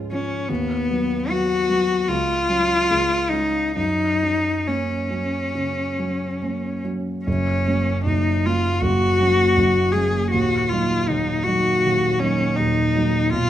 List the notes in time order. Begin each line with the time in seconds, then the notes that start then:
Already playing: G#2 F3 G#3 C#4
0.12 F3 C#4
0.48 D#2 B3
0.91 F#3 B3
1.30 F#3 B3 F#4
1.69 F#3 B3
2.08 C#2 F4
2.48 F#3 C#4
2.90 C#2
3.29 G#3 C#4 D#4
3.76 F#2 D#4
4.22 F#3 C#4
4.67 A#3 C#4
5.10 F#3 C#4
5.55 C#3
5.99 F#3 C#4
6.42 A#3 C#4
6.85 F#3 C#4
7.25 F#1 F#2 C#4
7.67 F#3 A#3 C#4
8.05 F#1 F#2 D#4
8.44 F#3 A#3 C#4 F4
8.81 F#1 F#2 F#4
9.19 F#3 A#3 C#4
9.57 F#1 F#2
9.92 F#3 A#3 G#4
9.96 C#4
10.31 D#1 D#2 F#4
10.69 F#3 A#3 D#4 F4
11.08 D#1 D#2 D#4
11.43 F#3 A#3 D#4 F#4
11.85 D#1 D#2
12.20 F#3 A#3 C#4 D#4
12.56 D#1 D#2 D#4
12.96 F#3 A#3 D#4
13.30 B0 B1 F4